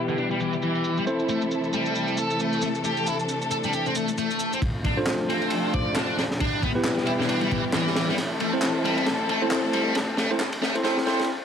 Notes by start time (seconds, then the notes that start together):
Already playing: B2 E3 G3 B3 E4 G4 B4
0.08 D3, shaker
0.18 D4, shaker
0.31 G3, shaker
0.40 E3, shaker
0.53 shaker
0.62 E3, shaker
0.75 shaker
0.84 shaker
0.97 G3, shaker
1.06 C3 A3 C4 E4 A4 C5, shaker
1.19 shaker
1.29 A3, shaker
1.42 shaker
1.51 shaker
1.64 shaker
1.73 G3, shaker
1.86 shaker
1.95 shaker
2.08 shaker
2.17 A4, shaker
2.30 shaker
2.40 A3, shaker
2.53 shaker
2.62 A3, shaker
2.75 shaker
2.84 D4 G4, shaker
2.97 shaker
3.07 E4, shaker
3.19 shaker
3.29 shaker
3.42 shaker
3.51 A4, shaker
3.64 G3, shaker
3.73 G4, shaker
3.86 C4, shaker
3.95 A3, shaker
4.08 shaker
4.18 A3, shaker
4.30 shaker
4.40 shaker
4.53 C4, shaker
4.62 D1 C3 F3 A3 D4 F4, kick, ride
4.84 D4, kick, ride
4.97 D4 F4 A4 C5
5.06 snare, clap, ride
5.29 C4, ride
5.42 ride
5.50 ride
5.74 D5, kick, ride
5.86 A1
5.96 D4, snare, clap, ride
6.18 E1 D4, snare, ride
6.31 snare
6.40 B2 E3 G3 D4 E4 G4, kick, ride
6.62 B3, kick, ride
6.75 B3 E4 G4 B4
6.84 snare, clap, ride
6.98 snare
7.07 G1 E4, ride
7.20 D3, snare
7.29 D4, ride
7.41 G3, ride
7.51 E3, kick, ride
7.73 E3, snare, clap, ride
7.87 snare
7.95 E2, snare, ride
8.08 G3, snare
8.18 A1 A3 C4 A4, snare, ride
8.40 A3, ride
8.53 C4 E4 A4 C5
8.62 snare, clap, ride
8.85 G3, ride
8.98 ride
9.06 snare, ride
9.29 A3, ride
9.42 E1 C4 E4 A4 C5
9.51 snare, clap, ride
9.73 G1 G3, ride
9.95 snare, ride
10.17 A3, snare, ride
10.31 C4 E4 A4 C5
10.40 snare, clap, ride
10.52 ride
10.62 B1 A3, snare
10.75 C4 E4 A4 C5, ride
10.84 A3 C4 E4 A4 C5, snare, ride
10.97 snare
11.06 D2 A3 C4 E4 A4 C5, snare, ride
11.19 E1, snare, ride
11.24 ride